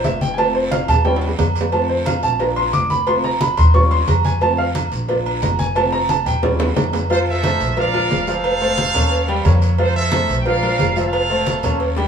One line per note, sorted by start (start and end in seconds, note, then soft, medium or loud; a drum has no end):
0.00 0.34 A#3 medium
0.00 0.35 D4 medium
0.00 0.35 F4 medium
0.04 0.83 F1 medium
0.04 0.21 E5 medium
0.04 cowbell medium
0.04 high conga medium
0.04 low timbale medium
0.04 low agogo medium
0.04 short guiro medium
0.21 0.38 G5 loud
0.21 cowbell medium
0.21 high conga medium
0.21 short guiro medium
0.34 0.86 A3 medium
0.34 0.36 G#5 medium
0.38 0.86 C4 soft
0.38 0.86 F4 medium
0.38 0.54 A5 loud
0.38 cowbell loud
0.38 high conga soft
0.38 low agogo loud
0.38 long guiro medium
0.55 0.71 C5 medium
0.55 cowbell medium
0.55 high conga soft
0.71 0.88 F5 medium
0.71 cowbell medium
0.71 high conga loud
0.71 high timbale medium
0.71 low agogo medium
0.71 short guiro medium
0.88 1.35 D#2 loud
0.88 1.05 A5 loud
0.88 cowbell medium
0.88 high conga soft
0.88 low conga medium
0.88 low agogo loud
0.88 short guiro medium
0.94 low timbale medium
1.05 1.27 G3 medium
1.05 1.28 C#4 medium
1.05 1.28 F4 medium
1.05 1.15 G5 medium
1.05 cowbell loud
1.05 high conga soft
1.05 low timbale loud
1.05 long guiro medium
1.16 high timbale loud
1.22 cowbell medium
1.22 high conga soft
1.22 low agogo medium
1.27 low timbale medium
1.39 2.17 F2 medium
1.39 cowbell medium
1.39 high conga medium
1.39 low timbale medium
1.39 low agogo loud
1.39 short guiro medium
1.55 cowbell medium
1.55 low agogo medium
1.55 short guiro medium
1.61 low timbale loud
1.72 2.36 A3 medium
1.72 2.36 C4 soft
1.72 2.37 F4 medium
1.72 1.89 A5 medium
1.72 cowbell loud
1.72 high conga soft
1.72 low agogo medium
1.72 long guiro medium
1.89 2.06 C5 medium
1.89 high conga soft
2.06 2.23 F5 medium
2.06 cowbell medium
2.06 high conga loud
2.06 low agogo loud
2.06 short guiro medium
2.23 2.70 A#1 loud
2.23 2.39 A5 medium
2.23 cowbell medium
2.23 high conga soft
2.23 short guiro medium
2.39 2.87 A#3 medium
2.39 2.88 D4 soft
2.39 2.88 F4 medium
2.39 2.56 A#5 medium
2.39 cowbell loud
2.39 high conga soft
2.39 low agogo medium
2.39 long guiro medium
2.56 2.73 C6 loud
2.56 high conga soft
2.56 low agogo loud
2.73 3.52 F1 loud
2.73 2.90 D6 loud
2.73 cowbell medium
2.73 high conga medium
2.73 low agogo medium
2.73 short guiro medium
2.90 3.06 B5 medium
2.90 cowbell medium
2.90 high conga medium
2.90 short guiro medium
3.07 3.29 A3 medium
3.07 3.30 C4 soft
3.07 3.30 F4 medium
3.07 3.23 C6 loud
3.07 cowbell loud
3.07 high conga soft
3.07 low agogo loud
3.07 long guiro medium
3.24 3.40 A#5 loud
3.24 cowbell medium
3.24 high conga soft
3.41 3.57 B5 medium
3.41 cowbell medium
3.41 high conga loud
3.41 low agogo medium
3.41 short guiro medium
3.57 4.04 D#2 loud
3.57 3.74 C6 loud
3.57 cowbell medium
3.57 high conga soft
3.57 low conga medium
3.57 low agogo loud
3.57 short guiro medium
3.74 3.96 G3 medium
3.74 3.97 C#4 medium
3.74 3.97 F4 medium
3.74 3.91 C#6 loud
3.74 cowbell loud
3.74 high conga soft
3.74 low conga medium
3.74 long guiro medium
3.91 4.07 C6 loud
3.91 cowbell medium
3.91 high conga soft
3.91 low agogo medium
4.08 4.86 F2 medium
4.08 4.24 A#5 medium
4.08 cowbell medium
4.08 high conga medium
4.08 low timbale medium
4.08 low agogo loud
4.08 short guiro medium
4.24 4.41 G#5 medium
4.24 cowbell medium
4.24 high conga medium
4.24 low agogo medium
4.24 short guiro medium
4.41 4.64 A3 medium
4.41 4.64 C4 medium
4.41 4.64 F4 medium
4.41 4.58 A5 loud
4.41 cowbell loud
4.41 high conga soft
4.41 low agogo medium
4.41 long guiro medium
4.58 4.68 F5 loud
4.58 high conga soft
4.75 cowbell medium
4.75 high conga loud
4.75 low agogo loud
4.75 short guiro medium
4.92 5.39 A#1 loud
4.92 cowbell medium
4.92 high conga soft
4.92 short guiro medium
5.08 5.56 A#3 medium
5.08 5.57 D4 medium
5.08 5.57 F4 medium
5.08 cowbell loud
5.08 high conga soft
5.08 low agogo medium
5.08 long guiro medium
5.26 high conga soft
5.26 low agogo loud
5.42 6.21 F1 medium
5.42 5.59 A#5 medium
5.42 cowbell medium
5.42 high conga medium
5.42 low timbale medium
5.42 low agogo medium
5.42 short guiro medium
5.59 5.75 G#5 medium
5.59 cowbell medium
5.59 high conga medium
5.59 short guiro medium
5.75 5.98 A3 medium
5.75 5.98 C4 medium
5.75 5.99 F4 medium
5.75 5.92 A5 medium
5.75 cowbell loud
5.75 high conga soft
5.75 low agogo loud
5.75 long guiro medium
5.92 6.09 A#5 loud
5.92 cowbell medium
5.92 high conga soft
6.09 6.26 A5 medium
6.09 cowbell medium
6.09 high conga loud
6.09 low agogo medium
6.09 short guiro medium
6.26 6.73 D#2 loud
6.26 6.73 G5 medium
6.26 cowbell medium
6.26 high conga soft
6.26 low conga medium
6.26 low agogo loud
6.26 short guiro medium
6.42 6.65 G3 medium
6.42 6.65 C#4 medium
6.42 6.66 F4 medium
6.42 cowbell loud
6.42 high bongo medium
6.42 high conga soft
6.42 low conga medium
6.42 high timbale loud
6.42 long guiro medium
6.60 cowbell medium
6.60 low bongo loud
6.60 high conga soft
6.60 low timbale loud
6.60 low agogo medium
6.76 7.55 F2 medium
6.76 cowbell medium
6.76 low bongo loud
6.76 high conga medium
6.76 low timbale loud
6.76 low agogo loud
6.76 short guiro medium
6.93 cowbell medium
6.93 low bongo medium
6.93 low timbale medium
6.93 low agogo medium
6.93 short guiro medium
7.10 7.38 F3 medium
7.10 7.38 F4 medium
7.10 7.74 F4 medium
7.10 7.28 A4 medium
7.10 7.19 C5 loud
7.10 7.38 F5 medium
7.10 cowbell loud
7.10 high conga soft
7.10 low agogo medium
7.10 long guiro medium
7.27 7.75 A4 medium
7.27 7.75 C5 medium
7.27 7.75 E5 loud
7.27 high conga soft
7.43 7.71 A3 medium
7.43 7.71 A4 medium
7.43 7.72 C5 medium
7.43 cowbell medium
7.43 high conga loud
7.43 low agogo loud
7.43 short guiro medium
7.60 8.07 A#1 loud
7.60 cowbell medium
7.60 high conga soft
7.60 short guiro medium
7.77 7.91 F3 medium
7.77 7.91 F4 medium
7.77 7.91 A#4 medium
7.77 8.41 A#4 medium
7.77 8.41 D5 medium
7.77 8.28 F5 loud
7.77 cowbell loud
7.77 high conga soft
7.77 low agogo medium
7.77 long guiro medium
7.94 8.22 F3 medium
7.94 8.22 F4 medium
7.94 8.22 A#4 medium
7.94 high conga soft
7.94 low agogo loud
8.11 8.89 F1 loud
8.11 cowbell medium
8.11 high conga medium
8.11 low timbale medium
8.11 low agogo medium
8.11 short guiro medium
8.27 8.55 F3 medium
8.27 8.55 F4 medium
8.27 9.59 A4 medium
8.27 9.59 C5 medium
8.27 8.55 F5 medium
8.27 9.59 F5 loud
8.27 cowbell medium
8.27 short guiro medium
8.44 cowbell loud
8.44 high conga soft
8.44 low agogo loud
8.44 long guiro medium
8.61 8.89 A3 medium
8.61 8.89 A4 medium
8.61 8.89 C5 medium
8.61 cowbell medium
8.61 high conga soft
8.78 cowbell medium
8.78 high conga loud
8.78 low agogo medium
8.78 short guiro medium
8.94 9.42 D#2 medium
8.94 9.22 A#3 medium
8.94 9.23 C#4 medium
8.94 9.22 A4 medium
8.94 cowbell medium
8.94 high conga soft
8.94 low conga medium
8.94 low agogo loud
8.94 short guiro medium
9.11 cowbell loud
9.11 high conga soft
9.11 long guiro medium
9.28 9.42 G3 loud
9.28 9.42 G4 medium
9.28 9.42 G5 medium
9.28 cowbell medium
9.28 high conga soft
9.28 low agogo medium
9.45 10.24 F2 loud
9.45 9.73 A#3 medium
9.45 9.73 A#4 medium
9.45 9.73 C#5 medium
9.45 cowbell medium
9.45 high conga medium
9.45 low timbale medium
9.45 low agogo loud
9.45 short guiro medium
9.62 cowbell medium
9.62 low agogo medium
9.62 short guiro medium
9.78 10.07 F3 medium
9.78 10.07 F4 medium
9.78 10.42 F4 medium
9.78 9.96 A4 medium
9.78 9.95 C5 loud
9.78 10.07 F5 medium
9.78 cowbell loud
9.78 high conga soft
9.78 low agogo loud
9.78 long guiro medium
9.95 10.43 A4 medium
9.95 10.43 C5 medium
9.95 10.36 E5 loud
9.95 high conga soft
10.12 10.40 A3 medium
10.12 10.40 A4 medium
10.12 10.40 C5 medium
10.12 cowbell medium
10.12 high conga loud
10.12 low agogo loud
10.12 short guiro medium
10.29 10.76 A#1 loud
10.29 cowbell medium
10.29 high conga soft
10.29 short guiro medium
10.40 10.47 G5 medium
10.45 10.60 F3 medium
10.45 10.60 F4 medium
10.45 10.60 A#4 medium
10.45 11.10 A#4 medium
10.45 11.10 D5 medium
10.45 10.96 F5 loud
10.45 cowbell loud
10.45 high conga soft
10.45 low agogo medium
10.45 long guiro medium
10.62 10.90 F3 medium
10.62 10.91 F4 medium
10.62 10.91 A#4 medium
10.62 high conga soft
10.62 low agogo loud
10.79 11.58 F1 medium
10.79 cowbell medium
10.79 high conga medium
10.79 low timbale medium
10.79 low agogo medium
10.79 short guiro medium
10.96 11.24 F3 medium
10.96 11.24 F4 medium
10.96 12.01 A4 medium
10.96 12.01 C5 medium
10.96 11.24 F5 medium
10.96 12.00 F5 loud
10.96 cowbell medium
10.96 short guiro medium
11.13 cowbell loud
11.13 high conga soft
11.13 low agogo loud
11.13 long guiro medium
11.30 11.57 A3 medium
11.30 11.58 A4 medium
11.30 11.58 C5 medium
11.30 cowbell medium
11.30 high conga soft
11.46 cowbell medium
11.46 high conga loud
11.46 low agogo medium
11.46 short guiro medium
11.63 12.08 D#2 medium
11.63 11.91 A#3 medium
11.63 11.91 C#4 medium
11.63 11.91 A4 medium
11.63 cowbell medium
11.63 high conga soft
11.63 low conga medium
11.63 low agogo loud
11.63 short guiro medium
11.80 cowbell loud
11.80 high conga soft
11.80 long guiro medium
11.96 12.08 G3 medium
11.96 12.08 G4 medium
11.96 12.08 G5 medium
11.96 cowbell medium
11.96 high bongo medium
11.96 high conga soft
11.96 low agogo medium